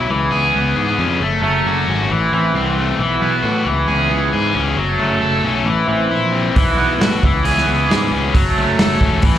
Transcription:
0.06 1.19 B3 medium
0.06 1.20 E4 medium
0.06 1.21 G#4 medium
0.10 0.28 C#2 medium
0.10 1.22 E3 medium
0.31 0.50 C#2 medium
0.31 0.75 G#4 medium
0.55 0.73 C#2 medium
0.55 1.21 B3 medium
0.76 0.95 G#2 medium
0.76 1.21 G#4 medium
0.99 1.17 F2 medium
0.99 1.22 C#4 medium
1.19 1.39 F#1 loud
1.19 2.08 F#3 medium
1.19 2.10 A3 medium
1.19 1.42 A3 medium
1.19 2.10 C#4 medium
1.19 2.11 A4 medium
1.42 1.61 F#1 medium
1.42 2.10 A3 medium
1.65 1.84 F#1 medium
1.65 2.11 F#4 medium
1.88 2.06 G#1 medium
1.88 2.11 C#4 medium
2.09 2.28 A1 medium
2.09 2.97 E3 medium
2.09 2.32 E3 medium
2.09 2.99 C4 medium
2.09 2.99 E4 medium
2.33 2.51 A1 medium
2.33 2.99 E3 medium
2.54 2.91 C2 medium
2.54 3.00 C4 medium
2.78 3.00 A3 medium
2.98 3.18 B1 loud
2.98 3.63 E3 medium
2.98 3.65 E3 medium
2.98 3.64 B3 medium
2.98 3.65 E4 medium
2.98 3.67 F#4 medium
3.21 3.40 B1 medium
3.21 3.67 B3 medium
3.43 3.62 A2 medium
3.43 3.66 F#4 medium
3.65 3.84 C#2 medium
3.65 4.77 E3 medium
3.65 4.77 B3 medium
3.65 4.77 C#4 medium
3.65 4.79 G#4 medium
3.88 4.07 C#2 medium
3.88 4.32 G#4 medium
4.10 4.29 C#2 medium
4.10 4.77 B3 medium
4.33 4.52 G#2 medium
4.33 4.78 G#4 medium
4.55 4.74 C#2 medium
4.55 4.78 C#4 medium
4.76 4.96 F#1 loud
4.76 5.65 F#3 medium
4.76 5.66 F#3 medium
4.76 5.66 A3 medium
4.76 5.67 C#4 medium
4.76 5.68 A4 medium
4.99 5.18 F#1 medium
4.99 5.67 A3 medium
5.22 5.40 F#1 medium
5.22 5.67 A4 medium
5.43 5.62 B1 medium
5.43 5.67 C#4 medium
5.65 5.84 A1 medium
5.65 6.53 E3 medium
5.65 5.88 E3 medium
5.65 6.55 C4 medium
5.65 6.55 E4 medium
5.88 6.07 A1 medium
5.88 6.53 E3 medium
6.11 6.47 A#1 medium
6.11 6.56 E4 medium
6.32 6.56 C4 medium
6.54 6.74 B1 loud
6.54 7.22 E3 medium
6.54 7.23 B3 medium
6.54 7.23 E4 medium
6.54 7.23 F#4 medium
6.54 kick loud
6.54 open hi-hat medium
6.76 6.95 B1 medium
6.76 7.22 B3 medium
6.99 7.18 A2 medium
6.99 7.23 F#4 medium
6.99 snare loud
6.99 open hi-hat medium
7.22 7.41 C#2 medium
7.22 8.32 E3 medium
7.22 8.33 E3 medium
7.22 8.33 B3 medium
7.22 8.34 C#4 medium
7.22 8.36 G#4 medium
7.22 kick medium
7.45 7.63 C#2 medium
7.45 7.88 G#4 medium
7.45 open hi-hat medium
7.58 snare soft
7.66 7.85 C#2 medium
7.66 8.34 B3 medium
7.89 8.08 G#2 medium
7.89 8.34 G#4 medium
7.89 snare medium
7.89 open hi-hat soft
8.11 8.30 C#2 medium
8.11 8.34 C#4 medium
8.33 8.53 F#1 medium
8.33 9.22 F#3 medium
8.33 9.22 A3 medium
8.33 9.23 C#4 medium
8.33 9.24 A4 medium
8.33 kick loud
8.33 open hi-hat medium
8.57 8.75 F#1 medium
8.57 9.24 A3 medium
8.78 8.97 F#1 medium
8.78 9.23 A4 medium
8.78 snare loud
8.78 open hi-hat medium
9.01 9.19 E1 medium
9.01 9.23 C#4 medium
9.01 kick medium
9.21 9.38 A1 medium
9.21 9.38 E3 medium
9.21 9.38 C4 medium
9.21 9.38 E4 medium
9.21 kick loud
9.21 open hi-hat medium
9.34 snare soft

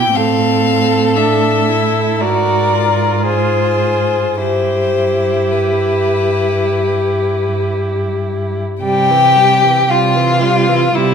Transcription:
0.00 0.14 B2 soft
0.00 0.14 E4 soft
0.00 0.17 G4 soft
0.00 0.17 G5 medium
0.14 2.22 A2 soft
0.14 1.17 C4 soft
0.14 2.22 A4 soft
0.14 1.18 F5 medium
1.16 1.70 D4 soft
1.16 2.23 E5 medium
1.69 2.23 E4 soft
2.20 4.36 G#2 soft
2.20 2.74 F#4 soft
2.20 3.26 A#4 soft
2.20 3.26 D5 medium
2.72 4.38 F4 soft
3.27 4.38 G#4 soft
3.27 4.35 C5 medium
4.37 8.59 G2 soft
4.37 8.63 E4 soft
4.37 8.63 G4 soft
4.37 5.52 C5 medium
5.51 7.72 B4 soft
8.83 9.77 C3 soft
8.83 9.12 G3 soft
8.83 9.92 G4 medium
8.83 9.91 G5 medium
9.11 9.38 E3 soft
9.37 9.65 G3 soft
9.63 9.89 E3 soft
9.89 10.82 C3 soft
9.89 10.17 G3 soft
9.89 10.97 F4 medium
9.89 10.96 F5 soft
10.15 10.43 E3 soft
10.42 10.70 G3 soft
10.68 10.93 E3 soft
10.93 11.14 C3 medium
10.93 11.14 G3 soft
10.93 11.14 E4 medium
10.93 11.14 E5 medium

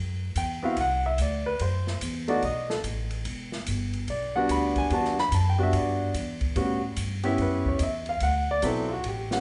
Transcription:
0.00 0.34 F#2 medium
0.35 0.75 E2 medium
0.35 0.62 G5 medium
0.35 kick soft
0.35 hi-hat pedal medium
0.35 ride medium
0.63 0.75 B3 medium
0.63 0.76 C4 medium
0.63 0.76 E4 medium
0.63 0.76 F#4 medium
0.63 0.78 F5 medium
0.77 1.17 C2 medium
0.77 kick soft
0.77 ride medium
0.81 1.05 F#5 medium
1.06 1.19 E5 medium
1.18 1.58 D2 medium
1.18 1.46 D5 medium
1.18 kick soft
1.18 hi-hat pedal medium
1.18 ride medium
1.46 1.60 B4 medium
1.59 2.00 F#2 medium
1.59 2.25 C5 medium
1.59 kick soft
1.59 ride medium
1.87 snare soft
2.01 2.41 E2 medium
2.01 kick soft
2.01 hi-hat pedal medium
2.01 ride medium
2.28 2.41 A3 medium
2.28 2.41 B3 medium
2.28 2.41 D#4 medium
2.28 2.42 F#4 medium
2.28 2.42 D5 medium
2.28 ride soft
2.42 2.82 B1 medium
2.42 2.70 D#5 medium
2.42 kick soft
2.42 ride medium
2.70 2.78 A4 medium
2.70 snare soft
2.84 3.24 A1 medium
2.84 kick soft
2.84 hi-hat pedal soft
2.84 ride medium
3.11 ride soft
3.25 3.65 E1 medium
3.25 kick soft
3.25 ride medium
3.52 snare soft
3.66 4.06 G1 medium
3.66 kick soft
3.66 hi-hat pedal medium
3.66 ride medium
3.93 ride soft
4.08 4.48 B1 medium
4.08 4.35 D5 medium
4.08 kick soft
4.08 ride medium
4.35 4.88 G3 medium
4.35 4.88 B3 medium
4.35 4.88 D4 medium
4.35 4.89 F#4 medium
4.35 4.49 F#5 medium
4.49 4.89 D2 medium
4.49 4.76 B5 medium
4.49 kick soft
4.49 hi-hat pedal soft
4.49 ride medium
4.76 4.91 G#5 loud
4.76 kick soft
4.76 ride soft
4.90 5.30 E2 medium
4.90 5.15 G3 medium
4.90 5.15 B3 medium
4.90 5.15 D4 medium
4.90 5.16 F#4 medium
4.90 5.18 A5 medium
4.90 kick soft
4.90 ride medium
5.05 snare soft
5.18 5.32 B5 loud
5.18 snare soft
5.32 5.72 F#2 loud
5.32 5.46 A5 medium
5.32 kick soft
5.32 hi-hat pedal medium
5.32 ride medium
5.50 5.61 G5 medium
5.58 6.11 G3 medium
5.58 6.11 B3 medium
5.58 6.12 D4 medium
5.58 6.12 F#4 medium
5.63 5.75 E5 medium
5.73 6.13 G2 medium
5.73 6.54 D5 medium
5.73 kick soft
5.73 ride medium
6.14 6.54 E2 medium
6.14 kick soft
6.14 hi-hat pedal soft
6.14 ride medium
6.41 kick medium
6.41 ride soft
6.56 6.96 A2 medium
6.56 6.80 G3 medium
6.56 6.80 B3 medium
6.56 6.80 C#4 medium
6.56 6.81 F#4 medium
6.56 kick soft
6.56 ride medium
6.96 7.37 G2 medium
6.96 kick soft
6.96 hi-hat pedal medium
6.96 ride medium
7.23 7.77 B3 medium
7.23 7.77 C#4 medium
7.23 7.78 E4 medium
7.23 7.77 G4 medium
7.23 ride soft
7.38 7.79 F#2 medium
7.38 7.66 B4 medium
7.38 kick soft
7.38 ride medium
7.65 7.81 C#5 medium
7.65 kick soft
7.79 8.20 E2 medium
7.79 7.81 D#5 medium
7.79 kick soft
7.79 hi-hat pedal soft
7.79 ride medium
7.83 8.08 E5 medium
8.06 8.22 F5 medium
8.06 ride soft
8.20 8.61 D2 medium
8.20 8.48 F#5 medium
8.20 kick soft
8.20 ride medium
8.51 8.64 D5 loud
8.62 9.03 B1 medium
8.62 8.87 F#3 medium
8.62 8.87 B3 medium
8.62 8.87 C4 medium
8.62 8.88 E4 medium
8.62 8.90 A4 medium
8.62 kick soft
8.62 hi-hat pedal medium
8.62 ride medium
8.88 8.90 F4 medium
8.93 9.05 F#4 medium
9.04 9.40 A1 medium
9.04 kick soft
9.04 ride medium
9.08 9.40 G4 medium
9.31 9.40 G3 medium
9.31 9.40 B3 medium
9.31 9.40 C#4 medium
9.31 9.40 F#5 medium
9.31 snare medium

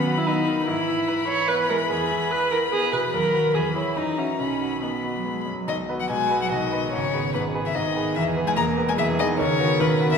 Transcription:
0.00 0.64 D#2 medium
0.00 0.67 F#3 medium
0.00 0.19 B3 medium
0.00 0.07 F#4 soft
0.00 0.19 B4 medium
0.00 0.64 B5 medium
0.07 0.39 F#4 soft
0.18 0.29 E4 medium
0.27 0.60 B3 soft
0.27 0.67 D#4 medium
0.47 0.68 D#3 soft
0.67 1.87 G#2 medium
0.67 3.10 E3 medium
0.67 1.27 E4 medium
0.67 3.10 B5 medium
0.88 1.20 E4 soft
1.08 1.41 B4 medium
1.28 1.62 E4 soft
1.28 1.50 C#5 medium
1.48 1.82 B3 soft
1.48 1.69 B4 medium
1.69 1.90 G#3 soft
1.69 1.78 A#4 medium
1.90 3.10 E2 soft
1.90 2.32 G#4 medium
2.11 2.44 E4 soft
2.31 2.64 B4 soft
2.31 2.51 B4 medium
2.51 2.85 E4 soft
2.51 2.60 A#4 medium
2.72 3.05 B3 soft
2.72 2.92 G#4 medium
2.93 3.14 B2 soft
2.93 3.01 B4 medium
3.13 3.54 D#2 soft
3.13 3.57 F#3 soft
3.13 3.56 A#4 medium
3.13 3.52 B5 soft
3.34 3.53 F#4 soft
3.34 3.53 B4 soft
3.54 3.95 E2 soft
3.54 3.97 E3 soft
3.54 3.76 G#4 medium
3.54 3.98 B5 soft
3.75 3.98 E4 medium
3.75 3.95 G#4 soft
3.75 3.95 C#5 soft
3.96 4.38 F#2 soft
3.96 4.42 E3 soft
3.96 4.20 D#4 medium
3.96 4.41 A#5 soft
4.18 4.39 C#4 soft
4.18 4.37 F#4 soft
4.18 4.37 E5 soft
4.39 5.64 B1 soft
4.39 4.82 D#3 soft
4.39 4.84 C#4 medium
4.39 4.82 B5 soft
4.61 4.95 F#4 soft
4.82 4.91 D#3 soft
4.82 5.25 B3 soft
4.82 5.17 D#5 soft
4.82 5.46 B5 soft
5.04 5.38 F#4 soft
5.15 5.27 F#3 soft
5.25 5.57 G#3 soft
5.25 5.59 B3 soft
5.46 5.68 F#2 soft
5.58 5.67 F#3 soft
5.68 5.88 B1 soft
5.68 5.88 B2 soft
5.68 5.76 D#3 medium
5.68 5.76 D#5 medium
5.89 6.08 B3 soft
5.89 6.08 F#4 soft
5.89 6.08 B4 soft
5.99 6.09 F#3 soft
5.99 6.10 F#5 medium
6.09 6.30 B1 soft
6.09 6.30 B2 soft
6.09 6.40 G#3 medium
6.09 6.89 F#4 soft
6.09 6.41 G#5 medium
6.30 6.49 B3 soft
6.30 6.49 F#4 soft
6.30 6.49 B4 soft
6.42 6.46 F#3 medium
6.42 6.52 F#5 medium
6.51 6.72 B1 soft
6.51 6.71 B2 soft
6.51 6.92 D#3 medium
6.51 6.92 D#5 medium
6.71 6.90 B3 soft
6.71 6.91 F#4 soft
6.71 6.91 B4 soft
6.92 7.13 G#1 soft
6.92 7.13 G#2 soft
6.92 7.36 C#3 medium
6.92 8.58 G#4 soft
6.92 7.33 C#5 medium
7.14 7.32 B3 soft
7.14 7.32 G#4 soft
7.14 7.33 B4 soft
7.34 7.54 G#1 soft
7.34 7.54 G#2 soft
7.34 7.66 B2 medium
7.34 7.42 B4 medium
7.54 7.73 B3 soft
7.54 7.73 G#4 soft
7.54 7.74 B4 soft
7.65 7.74 E3 medium
7.65 7.76 E5 medium
7.75 7.95 G#1 soft
7.75 7.95 G#2 soft
7.75 8.17 D#3 medium
7.75 8.15 D#5 medium
7.96 8.14 B3 soft
7.96 8.14 G#4 soft
7.96 8.14 B4 soft
8.15 8.36 E1 soft
8.15 8.36 E2 medium
8.15 8.45 E3 medium
8.15 8.23 E5 medium
8.36 8.55 B3 soft
8.36 8.55 G#4 soft
8.36 8.55 B4 soft
8.46 8.58 G#3 medium
8.46 8.51 G#5 medium
8.56 8.77 E1 medium
8.56 8.77 E2 medium
8.56 8.87 A#3 medium
8.56 8.98 A#4 medium
8.56 8.64 A#5 medium
8.77 8.96 B3 soft
8.77 8.96 G#4 soft
8.77 8.96 B4 soft
8.88 8.99 G#3 medium
8.88 8.93 G#5 medium
8.98 9.18 E1 medium
8.98 9.18 E2 medium
8.98 9.20 E3 medium
8.98 9.39 G#4 medium
8.98 9.06 E5 medium
9.19 9.41 D#3 medium
9.19 9.37 B3 soft
9.19 9.37 G#4 soft
9.19 9.38 B4 medium
9.19 9.27 D#5 medium
9.39 9.59 D#2 medium
9.39 9.82 C#3 medium
9.39 9.59 D#3 medium
9.39 10.18 A#4 medium
9.39 9.82 C#5 medium
9.59 9.78 B3 soft
9.59 9.78 F#4 medium
9.59 9.78 B4 medium
9.80 10.00 D#2 medium
9.80 10.12 B2 medium
9.80 10.00 D#3 medium
9.80 10.11 B4 medium
10.00 10.18 B3 medium
10.00 10.18 F#4 soft
10.00 10.18 B4 medium
10.11 10.18 E3 medium
10.11 10.18 E5 medium

